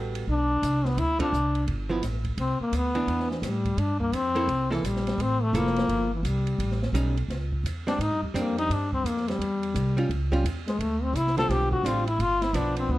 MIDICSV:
0, 0, Header, 1, 6, 480
1, 0, Start_track
1, 0, Key_signature, 0, "major"
1, 0, Tempo, 350467
1, 1339, Time_signature, 4, 2, 24, 8
1, 17784, End_track
2, 0, Start_track
2, 0, Title_t, "Hollow-body jazz guitar"
2, 0, Program_c, 0, 26
2, 0, Note_on_c, 0, 55, 45
2, 0, Note_on_c, 0, 59, 51
2, 0, Note_on_c, 0, 66, 48
2, 0, Note_on_c, 0, 69, 56
2, 345, Note_off_c, 0, 55, 0
2, 348, Note_off_c, 0, 59, 0
2, 350, Note_off_c, 0, 66, 0
2, 352, Note_off_c, 0, 69, 0
2, 1632, Note_on_c, 0, 50, 57
2, 1639, Note_on_c, 0, 57, 53
2, 1645, Note_on_c, 0, 60, 56
2, 1648, Note_on_c, 0, 65, 62
2, 1795, Note_off_c, 0, 50, 0
2, 1799, Note_off_c, 0, 57, 0
2, 1802, Note_off_c, 0, 60, 0
2, 1803, Note_off_c, 0, 65, 0
2, 2595, Note_on_c, 0, 53, 55
2, 2605, Note_on_c, 0, 59, 63
2, 2614, Note_on_c, 0, 64, 64
2, 2756, Note_off_c, 0, 53, 0
2, 2762, Note_off_c, 0, 59, 0
2, 2766, Note_off_c, 0, 64, 0
2, 4042, Note_on_c, 0, 52, 54
2, 4048, Note_on_c, 0, 59, 58
2, 4061, Note_on_c, 0, 62, 65
2, 4663, Note_off_c, 0, 52, 0
2, 4666, Note_off_c, 0, 59, 0
2, 4672, Note_off_c, 0, 62, 0
2, 5964, Note_on_c, 0, 58, 69
2, 5975, Note_on_c, 0, 64, 65
2, 5979, Note_on_c, 0, 69, 70
2, 6123, Note_off_c, 0, 58, 0
2, 6128, Note_off_c, 0, 64, 0
2, 6130, Note_off_c, 0, 69, 0
2, 6444, Note_on_c, 0, 58, 56
2, 6455, Note_on_c, 0, 64, 57
2, 6466, Note_on_c, 0, 69, 64
2, 6603, Note_off_c, 0, 58, 0
2, 6608, Note_off_c, 0, 64, 0
2, 6614, Note_off_c, 0, 69, 0
2, 7591, Note_on_c, 0, 53, 62
2, 7600, Note_on_c, 0, 64, 62
2, 7606, Note_on_c, 0, 69, 60
2, 8313, Note_off_c, 0, 53, 0
2, 8318, Note_off_c, 0, 64, 0
2, 8321, Note_off_c, 0, 69, 0
2, 9509, Note_on_c, 0, 55, 48
2, 9515, Note_on_c, 0, 61, 50
2, 9525, Note_on_c, 0, 63, 58
2, 9785, Note_off_c, 0, 55, 0
2, 9788, Note_off_c, 0, 61, 0
2, 9792, Note_off_c, 0, 63, 0
2, 10778, Note_on_c, 0, 55, 51
2, 10785, Note_on_c, 0, 60, 53
2, 10794, Note_on_c, 0, 62, 54
2, 10936, Note_off_c, 0, 55, 0
2, 10940, Note_off_c, 0, 60, 0
2, 10944, Note_off_c, 0, 62, 0
2, 11426, Note_on_c, 0, 55, 49
2, 11434, Note_on_c, 0, 60, 58
2, 11442, Note_on_c, 0, 62, 62
2, 12155, Note_off_c, 0, 55, 0
2, 12159, Note_off_c, 0, 60, 0
2, 12163, Note_off_c, 0, 62, 0
2, 13655, Note_on_c, 0, 55, 53
2, 13668, Note_on_c, 0, 61, 52
2, 13676, Note_on_c, 0, 65, 63
2, 13816, Note_off_c, 0, 55, 0
2, 13822, Note_off_c, 0, 61, 0
2, 13826, Note_off_c, 0, 65, 0
2, 14133, Note_on_c, 0, 55, 74
2, 14144, Note_on_c, 0, 61, 69
2, 14149, Note_on_c, 0, 65, 76
2, 14294, Note_off_c, 0, 55, 0
2, 14300, Note_off_c, 0, 61, 0
2, 14302, Note_off_c, 0, 65, 0
2, 15574, Note_on_c, 0, 50, 54
2, 15585, Note_on_c, 0, 55, 54
2, 15590, Note_on_c, 0, 60, 53
2, 15594, Note_on_c, 0, 65, 62
2, 16195, Note_off_c, 0, 50, 0
2, 16200, Note_off_c, 0, 55, 0
2, 16203, Note_off_c, 0, 60, 0
2, 16205, Note_off_c, 0, 65, 0
2, 16224, Note_on_c, 0, 50, 57
2, 16236, Note_on_c, 0, 55, 58
2, 16243, Note_on_c, 0, 60, 65
2, 16244, Note_on_c, 0, 65, 62
2, 16502, Note_off_c, 0, 50, 0
2, 16508, Note_off_c, 0, 55, 0
2, 16511, Note_off_c, 0, 60, 0
2, 16512, Note_off_c, 0, 65, 0
2, 17183, Note_on_c, 0, 53, 61
2, 17192, Note_on_c, 0, 59, 63
2, 17197, Note_on_c, 0, 62, 66
2, 17784, Note_off_c, 0, 53, 0
2, 17784, Note_off_c, 0, 59, 0
2, 17784, Note_off_c, 0, 62, 0
2, 17784, End_track
3, 0, Start_track
3, 0, Title_t, "Trombone"
3, 0, Program_c, 1, 57
3, 414, Note_on_c, 1, 62, 84
3, 1183, Note_on_c, 1, 59, 68
3, 1203, Note_off_c, 1, 62, 0
3, 1357, Note_on_c, 1, 64, 89
3, 1377, Note_off_c, 1, 59, 0
3, 1649, Note_off_c, 1, 64, 0
3, 1657, Note_on_c, 1, 62, 82
3, 2260, Note_off_c, 1, 62, 0
3, 3283, Note_on_c, 1, 60, 71
3, 3554, Note_off_c, 1, 60, 0
3, 3582, Note_on_c, 1, 58, 74
3, 3782, Note_on_c, 1, 59, 84
3, 3803, Note_off_c, 1, 58, 0
3, 4541, Note_off_c, 1, 59, 0
3, 4549, Note_on_c, 1, 52, 43
3, 4732, Note_on_c, 1, 55, 65
3, 4752, Note_off_c, 1, 52, 0
3, 5191, Note_on_c, 1, 62, 85
3, 5211, Note_off_c, 1, 55, 0
3, 5472, Note_off_c, 1, 62, 0
3, 5481, Note_on_c, 1, 58, 80
3, 5685, Note_on_c, 1, 60, 91
3, 5706, Note_off_c, 1, 58, 0
3, 6455, Note_off_c, 1, 60, 0
3, 6463, Note_on_c, 1, 52, 64
3, 6656, Note_on_c, 1, 55, 70
3, 6677, Note_off_c, 1, 52, 0
3, 7146, Note_on_c, 1, 60, 87
3, 7166, Note_off_c, 1, 55, 0
3, 7431, Note_on_c, 1, 57, 82
3, 7452, Note_off_c, 1, 60, 0
3, 7619, Note_on_c, 1, 58, 88
3, 7639, Note_off_c, 1, 57, 0
3, 8389, Note_off_c, 1, 58, 0
3, 8409, Note_on_c, 1, 52, 59
3, 8584, Note_on_c, 1, 55, 63
3, 8605, Note_off_c, 1, 52, 0
3, 9353, Note_off_c, 1, 55, 0
3, 10793, Note_on_c, 1, 62, 82
3, 10973, Note_on_c, 1, 63, 85
3, 10993, Note_off_c, 1, 62, 0
3, 11269, Note_off_c, 1, 63, 0
3, 11283, Note_on_c, 1, 55, 45
3, 11472, Note_on_c, 1, 58, 72
3, 11492, Note_off_c, 1, 55, 0
3, 11751, Note_off_c, 1, 58, 0
3, 11759, Note_on_c, 1, 63, 97
3, 11956, Note_on_c, 1, 62, 81
3, 11976, Note_off_c, 1, 63, 0
3, 12234, Note_off_c, 1, 62, 0
3, 12242, Note_on_c, 1, 60, 81
3, 12429, Note_on_c, 1, 58, 71
3, 12450, Note_off_c, 1, 60, 0
3, 12713, Note_on_c, 1, 55, 74
3, 12734, Note_off_c, 1, 58, 0
3, 13842, Note_off_c, 1, 55, 0
3, 14612, Note_on_c, 1, 56, 64
3, 14797, Note_on_c, 1, 57, 70
3, 14817, Note_off_c, 1, 56, 0
3, 15108, Note_on_c, 1, 60, 77
3, 15129, Note_off_c, 1, 57, 0
3, 15281, Note_on_c, 1, 64, 82
3, 15302, Note_off_c, 1, 60, 0
3, 15582, Note_off_c, 1, 64, 0
3, 15589, Note_on_c, 1, 69, 103
3, 15764, Note_on_c, 1, 67, 88
3, 15784, Note_off_c, 1, 69, 0
3, 16049, Note_off_c, 1, 67, 0
3, 16057, Note_on_c, 1, 66, 82
3, 16241, Note_on_c, 1, 65, 75
3, 16261, Note_off_c, 1, 66, 0
3, 16531, Note_off_c, 1, 65, 0
3, 16539, Note_on_c, 1, 64, 79
3, 16728, Note_on_c, 1, 65, 87
3, 16749, Note_off_c, 1, 64, 0
3, 17011, Note_on_c, 1, 64, 80
3, 17032, Note_off_c, 1, 65, 0
3, 17210, Note_on_c, 1, 62, 92
3, 17230, Note_off_c, 1, 64, 0
3, 17503, Note_off_c, 1, 62, 0
3, 17514, Note_on_c, 1, 60, 72
3, 17682, Note_on_c, 1, 59, 73
3, 17703, Note_off_c, 1, 60, 0
3, 17784, Note_off_c, 1, 59, 0
3, 17784, End_track
4, 0, Start_track
4, 0, Title_t, "Upright bass"
4, 0, Program_c, 2, 32
4, 0, Note_on_c, 2, 33, 76
4, 365, Note_off_c, 2, 33, 0
4, 376, Note_on_c, 2, 35, 72
4, 843, Note_off_c, 2, 35, 0
4, 854, Note_on_c, 2, 36, 81
4, 1321, Note_off_c, 2, 36, 0
4, 1330, Note_on_c, 2, 38, 72
4, 1800, Note_off_c, 2, 38, 0
4, 1815, Note_on_c, 2, 36, 81
4, 2282, Note_off_c, 2, 36, 0
4, 2291, Note_on_c, 2, 31, 75
4, 2760, Note_off_c, 2, 31, 0
4, 2775, Note_on_c, 2, 33, 72
4, 3242, Note_off_c, 2, 33, 0
4, 3253, Note_on_c, 2, 36, 70
4, 3539, Note_off_c, 2, 36, 0
4, 3726, Note_on_c, 2, 38, 77
4, 4197, Note_off_c, 2, 38, 0
4, 4208, Note_on_c, 2, 40, 76
4, 4679, Note_off_c, 2, 40, 0
4, 4685, Note_on_c, 2, 45, 81
4, 5157, Note_off_c, 2, 45, 0
4, 5166, Note_on_c, 2, 43, 78
4, 5638, Note_off_c, 2, 43, 0
4, 5646, Note_on_c, 2, 41, 89
4, 6119, Note_off_c, 2, 41, 0
4, 6132, Note_on_c, 2, 36, 74
4, 6603, Note_off_c, 2, 36, 0
4, 6615, Note_on_c, 2, 34, 79
4, 7085, Note_off_c, 2, 34, 0
4, 7093, Note_on_c, 2, 33, 84
4, 7565, Note_off_c, 2, 33, 0
4, 7576, Note_on_c, 2, 29, 83
4, 8047, Note_off_c, 2, 29, 0
4, 8062, Note_on_c, 2, 31, 80
4, 8523, Note_off_c, 2, 31, 0
4, 8531, Note_on_c, 2, 36, 79
4, 9006, Note_off_c, 2, 36, 0
4, 9017, Note_on_c, 2, 33, 79
4, 9479, Note_off_c, 2, 33, 0
4, 9487, Note_on_c, 2, 35, 85
4, 9965, Note_off_c, 2, 35, 0
4, 9975, Note_on_c, 2, 37, 81
4, 10450, Note_off_c, 2, 37, 0
4, 10457, Note_on_c, 2, 40, 71
4, 10931, Note_off_c, 2, 40, 0
4, 10939, Note_on_c, 2, 44, 77
4, 11107, Note_off_c, 2, 44, 0
4, 11107, Note_on_c, 2, 43, 50
4, 11256, Note_off_c, 2, 43, 0
4, 11264, Note_on_c, 2, 39, 55
4, 11418, Note_off_c, 2, 39, 0
4, 11428, Note_on_c, 2, 41, 82
4, 11898, Note_off_c, 2, 41, 0
4, 11911, Note_on_c, 2, 43, 74
4, 12373, Note_off_c, 2, 43, 0
4, 12382, Note_on_c, 2, 41, 76
4, 12850, Note_off_c, 2, 41, 0
4, 12859, Note_on_c, 2, 40, 77
4, 13333, Note_off_c, 2, 40, 0
4, 13346, Note_on_c, 2, 36, 82
4, 13817, Note_off_c, 2, 36, 0
4, 13824, Note_on_c, 2, 37, 81
4, 14289, Note_off_c, 2, 37, 0
4, 14297, Note_on_c, 2, 40, 85
4, 14768, Note_off_c, 2, 40, 0
4, 14776, Note_on_c, 2, 38, 81
4, 15241, Note_off_c, 2, 38, 0
4, 15249, Note_on_c, 2, 36, 84
4, 15726, Note_off_c, 2, 36, 0
4, 15736, Note_on_c, 2, 35, 82
4, 16202, Note_off_c, 2, 35, 0
4, 16210, Note_on_c, 2, 33, 82
4, 16685, Note_off_c, 2, 33, 0
4, 16694, Note_on_c, 2, 31, 73
4, 17155, Note_off_c, 2, 31, 0
4, 17163, Note_on_c, 2, 35, 85
4, 17639, Note_off_c, 2, 35, 0
4, 17653, Note_on_c, 2, 38, 80
4, 17784, Note_off_c, 2, 38, 0
4, 17784, End_track
5, 0, Start_track
5, 0, Title_t, "Muted upright bass strokes"
5, 3564, Note_on_c, 9, 29, 35
5, 3701, Note_off_c, 9, 29, 0
5, 17784, End_track
6, 0, Start_track
6, 0, Title_t, "Drums"
6, 207, Note_on_c, 9, 51, 54
6, 344, Note_off_c, 9, 51, 0
6, 862, Note_on_c, 9, 44, 57
6, 862, Note_on_c, 9, 51, 62
6, 999, Note_off_c, 9, 44, 0
6, 999, Note_off_c, 9, 51, 0
6, 1164, Note_on_c, 9, 38, 34
6, 1301, Note_off_c, 9, 38, 0
6, 1340, Note_on_c, 9, 51, 57
6, 1477, Note_off_c, 9, 51, 0
6, 1640, Note_on_c, 9, 51, 66
6, 1641, Note_on_c, 9, 36, 74
6, 1777, Note_off_c, 9, 51, 0
6, 1778, Note_off_c, 9, 36, 0
6, 1826, Note_on_c, 9, 44, 54
6, 1963, Note_off_c, 9, 44, 0
6, 2123, Note_on_c, 9, 51, 42
6, 2260, Note_off_c, 9, 51, 0
6, 2295, Note_on_c, 9, 51, 52
6, 2432, Note_off_c, 9, 51, 0
6, 2774, Note_on_c, 9, 38, 35
6, 2777, Note_on_c, 9, 44, 59
6, 2777, Note_on_c, 9, 51, 62
6, 2911, Note_off_c, 9, 38, 0
6, 2914, Note_off_c, 9, 44, 0
6, 2914, Note_off_c, 9, 51, 0
6, 3075, Note_on_c, 9, 51, 39
6, 3077, Note_on_c, 9, 36, 46
6, 3212, Note_off_c, 9, 51, 0
6, 3214, Note_off_c, 9, 36, 0
6, 3254, Note_on_c, 9, 51, 58
6, 3391, Note_off_c, 9, 51, 0
6, 3735, Note_on_c, 9, 44, 52
6, 3735, Note_on_c, 9, 51, 66
6, 3872, Note_off_c, 9, 44, 0
6, 3872, Note_off_c, 9, 51, 0
6, 4038, Note_on_c, 9, 51, 43
6, 4175, Note_off_c, 9, 51, 0
6, 4219, Note_on_c, 9, 51, 51
6, 4356, Note_off_c, 9, 51, 0
6, 4379, Note_on_c, 9, 38, 26
6, 4516, Note_off_c, 9, 38, 0
6, 4535, Note_on_c, 9, 38, 37
6, 4672, Note_off_c, 9, 38, 0
6, 4696, Note_on_c, 9, 38, 37
6, 4698, Note_on_c, 9, 44, 53
6, 4698, Note_on_c, 9, 51, 61
6, 4833, Note_off_c, 9, 38, 0
6, 4835, Note_off_c, 9, 44, 0
6, 4835, Note_off_c, 9, 51, 0
6, 5001, Note_on_c, 9, 36, 51
6, 5005, Note_on_c, 9, 51, 40
6, 5138, Note_off_c, 9, 36, 0
6, 5142, Note_off_c, 9, 51, 0
6, 5176, Note_on_c, 9, 51, 56
6, 5313, Note_off_c, 9, 51, 0
6, 5483, Note_on_c, 9, 36, 45
6, 5620, Note_off_c, 9, 36, 0
6, 5660, Note_on_c, 9, 44, 45
6, 5660, Note_on_c, 9, 51, 62
6, 5797, Note_off_c, 9, 44, 0
6, 5797, Note_off_c, 9, 51, 0
6, 5967, Note_on_c, 9, 51, 42
6, 6104, Note_off_c, 9, 51, 0
6, 6144, Note_on_c, 9, 51, 52
6, 6281, Note_off_c, 9, 51, 0
6, 6450, Note_on_c, 9, 38, 39
6, 6587, Note_off_c, 9, 38, 0
6, 6637, Note_on_c, 9, 44, 64
6, 6637, Note_on_c, 9, 51, 64
6, 6774, Note_off_c, 9, 44, 0
6, 6774, Note_off_c, 9, 51, 0
6, 6794, Note_on_c, 9, 38, 28
6, 6931, Note_off_c, 9, 38, 0
6, 6942, Note_on_c, 9, 51, 40
6, 6951, Note_on_c, 9, 38, 41
6, 7079, Note_off_c, 9, 51, 0
6, 7088, Note_off_c, 9, 38, 0
6, 7120, Note_on_c, 9, 51, 55
6, 7257, Note_off_c, 9, 51, 0
6, 7596, Note_on_c, 9, 44, 58
6, 7596, Note_on_c, 9, 51, 63
6, 7733, Note_off_c, 9, 44, 0
6, 7733, Note_off_c, 9, 51, 0
6, 7762, Note_on_c, 9, 38, 28
6, 7894, Note_on_c, 9, 51, 43
6, 7899, Note_off_c, 9, 38, 0
6, 7915, Note_on_c, 9, 38, 44
6, 8031, Note_off_c, 9, 51, 0
6, 8052, Note_off_c, 9, 38, 0
6, 8072, Note_on_c, 9, 51, 55
6, 8209, Note_off_c, 9, 51, 0
6, 8556, Note_on_c, 9, 44, 52
6, 8556, Note_on_c, 9, 51, 67
6, 8693, Note_off_c, 9, 44, 0
6, 8693, Note_off_c, 9, 51, 0
6, 8859, Note_on_c, 9, 51, 44
6, 8996, Note_off_c, 9, 51, 0
6, 9036, Note_on_c, 9, 51, 63
6, 9173, Note_off_c, 9, 51, 0
6, 9194, Note_on_c, 9, 38, 25
6, 9331, Note_off_c, 9, 38, 0
6, 9348, Note_on_c, 9, 38, 42
6, 9485, Note_off_c, 9, 38, 0
6, 9515, Note_on_c, 9, 44, 60
6, 9515, Note_on_c, 9, 51, 61
6, 9652, Note_off_c, 9, 44, 0
6, 9652, Note_off_c, 9, 51, 0
6, 9825, Note_on_c, 9, 51, 43
6, 9962, Note_off_c, 9, 51, 0
6, 10000, Note_on_c, 9, 38, 35
6, 10003, Note_on_c, 9, 51, 51
6, 10137, Note_off_c, 9, 38, 0
6, 10140, Note_off_c, 9, 51, 0
6, 10304, Note_on_c, 9, 36, 55
6, 10441, Note_off_c, 9, 36, 0
6, 10488, Note_on_c, 9, 44, 52
6, 10488, Note_on_c, 9, 51, 64
6, 10625, Note_off_c, 9, 44, 0
6, 10625, Note_off_c, 9, 51, 0
6, 10789, Note_on_c, 9, 38, 56
6, 10791, Note_on_c, 9, 51, 43
6, 10926, Note_off_c, 9, 38, 0
6, 10928, Note_off_c, 9, 51, 0
6, 10967, Note_on_c, 9, 51, 65
6, 11103, Note_off_c, 9, 51, 0
6, 11445, Note_on_c, 9, 44, 57
6, 11445, Note_on_c, 9, 51, 67
6, 11582, Note_off_c, 9, 44, 0
6, 11582, Note_off_c, 9, 51, 0
6, 11755, Note_on_c, 9, 51, 47
6, 11892, Note_off_c, 9, 51, 0
6, 11928, Note_on_c, 9, 51, 57
6, 12065, Note_off_c, 9, 51, 0
6, 12225, Note_on_c, 9, 36, 57
6, 12362, Note_off_c, 9, 36, 0
6, 12406, Note_on_c, 9, 44, 57
6, 12406, Note_on_c, 9, 51, 62
6, 12543, Note_off_c, 9, 44, 0
6, 12543, Note_off_c, 9, 51, 0
6, 12561, Note_on_c, 9, 38, 25
6, 12698, Note_off_c, 9, 38, 0
6, 12712, Note_on_c, 9, 51, 45
6, 12732, Note_on_c, 9, 38, 44
6, 12849, Note_off_c, 9, 51, 0
6, 12869, Note_off_c, 9, 38, 0
6, 12894, Note_on_c, 9, 51, 60
6, 13031, Note_off_c, 9, 51, 0
6, 13189, Note_on_c, 9, 51, 44
6, 13326, Note_off_c, 9, 51, 0
6, 13362, Note_on_c, 9, 44, 60
6, 13362, Note_on_c, 9, 51, 63
6, 13499, Note_off_c, 9, 44, 0
6, 13499, Note_off_c, 9, 51, 0
6, 13665, Note_on_c, 9, 51, 41
6, 13802, Note_off_c, 9, 51, 0
6, 13841, Note_on_c, 9, 51, 53
6, 13978, Note_off_c, 9, 51, 0
6, 14138, Note_on_c, 9, 36, 45
6, 14150, Note_on_c, 9, 51, 44
6, 14275, Note_off_c, 9, 36, 0
6, 14287, Note_off_c, 9, 51, 0
6, 14321, Note_on_c, 9, 44, 61
6, 14321, Note_on_c, 9, 51, 70
6, 14458, Note_off_c, 9, 44, 0
6, 14458, Note_off_c, 9, 51, 0
6, 14621, Note_on_c, 9, 38, 39
6, 14624, Note_on_c, 9, 51, 43
6, 14758, Note_off_c, 9, 38, 0
6, 14760, Note_off_c, 9, 51, 0
6, 14798, Note_on_c, 9, 51, 57
6, 14935, Note_off_c, 9, 51, 0
6, 15277, Note_on_c, 9, 44, 55
6, 15277, Note_on_c, 9, 51, 59
6, 15414, Note_off_c, 9, 44, 0
6, 15414, Note_off_c, 9, 51, 0
6, 15434, Note_on_c, 9, 38, 27
6, 15571, Note_off_c, 9, 38, 0
6, 15580, Note_on_c, 9, 51, 45
6, 15594, Note_on_c, 9, 38, 41
6, 15717, Note_off_c, 9, 51, 0
6, 15731, Note_off_c, 9, 38, 0
6, 15754, Note_on_c, 9, 38, 35
6, 15756, Note_on_c, 9, 51, 54
6, 15891, Note_off_c, 9, 38, 0
6, 15893, Note_off_c, 9, 51, 0
6, 16052, Note_on_c, 9, 36, 50
6, 16189, Note_off_c, 9, 36, 0
6, 16240, Note_on_c, 9, 44, 60
6, 16240, Note_on_c, 9, 51, 64
6, 16377, Note_off_c, 9, 44, 0
6, 16377, Note_off_c, 9, 51, 0
6, 16537, Note_on_c, 9, 51, 44
6, 16674, Note_off_c, 9, 51, 0
6, 16706, Note_on_c, 9, 51, 59
6, 16843, Note_off_c, 9, 51, 0
6, 17006, Note_on_c, 9, 38, 47
6, 17009, Note_on_c, 9, 51, 45
6, 17143, Note_off_c, 9, 38, 0
6, 17146, Note_off_c, 9, 51, 0
6, 17177, Note_on_c, 9, 44, 50
6, 17177, Note_on_c, 9, 51, 71
6, 17314, Note_off_c, 9, 44, 0
6, 17314, Note_off_c, 9, 51, 0
6, 17483, Note_on_c, 9, 51, 46
6, 17620, Note_off_c, 9, 51, 0
6, 17784, End_track
0, 0, End_of_file